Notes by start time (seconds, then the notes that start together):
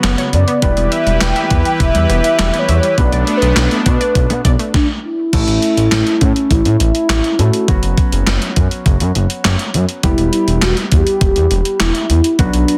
Already playing: C#3 B3 C#4 F#4 B4
0.03 F#1 B3, snare, clap, closed hi-hat
0.18 C#5, closed hi-hat
0.33 F#2 D5, closed hi-hat
0.48 B3, closed hi-hat
0.62 E1 E3 G3 B3 E4 G4 B4 D5, kick, closed hi-hat
0.77 E1 B3, closed hi-hat
0.92 E5, closed hi-hat
1.06 E1 G3, closed hi-hat
1.21 E1 B3 G5, snare, clap, closed hi-hat
1.36 E5, closed hi-hat
1.50 E2 G3, kick, closed hi-hat
1.65 G5, closed hi-hat
1.80 E1 E5, kick, closed hi-hat
1.95 E2 G3, closed hi-hat
2.10 E1 B3, closed hi-hat
2.20 E5
2.24 E5, closed hi-hat
2.39 E1 G3, snare, clap, closed hi-hat
2.54 B3, closed hi-hat
2.59 C#5
2.68 E2 E5, closed hi-hat
2.83 G3, closed hi-hat
2.98 B1 A3 B3 D4 F#4 B4 D5, kick, closed hi-hat
3.12 B1 D5, closed hi-hat
3.27 A3, closed hi-hat
3.37 B4
3.42 B1 B3, closed hi-hat
3.56 B1, snare, clap, closed hi-hat
3.71 A3, closed hi-hat
3.86 B2 B3 B4, kick, closed hi-hat
4.01 D5, closed hi-hat
4.15 B1, kick, closed hi-hat
4.30 B2 B3, closed hi-hat
4.45 B1 D5, kick, closed hi-hat
4.59 A3, closed hi-hat
4.74 D4, kick, snare
5.04 E4
5.33 A1 A3 C#4 E4 A4, kick, closed hi-hat, crash
5.48 A1, closed hi-hat
5.62 closed hi-hat
5.77 A1, closed hi-hat
5.92 A1, snare, clap, closed hi-hat
6.07 closed hi-hat
6.21 A2 C#4, kick, closed hi-hat
6.36 closed hi-hat
6.51 A1 E4, kick, closed hi-hat
6.65 A2, closed hi-hat
6.80 A1 E4, closed hi-hat
6.95 closed hi-hat
7.09 A1, snare, clap, closed hi-hat
7.24 closed hi-hat
7.39 A2 A3 C#4 E4 F#4 A4, closed hi-hat
7.53 closed hi-hat
7.68 F#1 F#3 B3 C#4 F#4, kick, closed hi-hat
7.83 F#1, closed hi-hat
7.98 kick, closed hi-hat
8.12 F#1, closed hi-hat
8.27 F#1, snare, clap, closed hi-hat
8.42 closed hi-hat
8.56 F#2, kick, closed hi-hat
8.71 closed hi-hat
8.86 F#1, kick, closed hi-hat
9.00 F#2, closed hi-hat
9.15 F#1, closed hi-hat
9.30 closed hi-hat
9.44 F#1, snare, clap, closed hi-hat
9.59 closed hi-hat
9.74 F#2, closed hi-hat
9.89 closed hi-hat
10.03 E1 G3 B3 E4 G4, kick, closed hi-hat
10.18 E1, closed hi-hat
10.33 E4, closed hi-hat
10.48 E1, closed hi-hat
10.62 E1 F#4, snare, clap, closed hi-hat
10.77 closed hi-hat
10.92 E2 G4, kick, closed hi-hat
11.07 closed hi-hat
11.21 E1, kick, closed hi-hat
11.36 E2, closed hi-hat
11.51 E1, closed hi-hat
11.65 closed hi-hat
11.80 E1 E4, snare, clap, closed hi-hat
11.95 closed hi-hat
12.10 E2, closed hi-hat
12.24 closed hi-hat
12.39 B1 F#3 B3 D4 F#4, kick, closed hi-hat
12.53 B1, closed hi-hat
12.68 closed hi-hat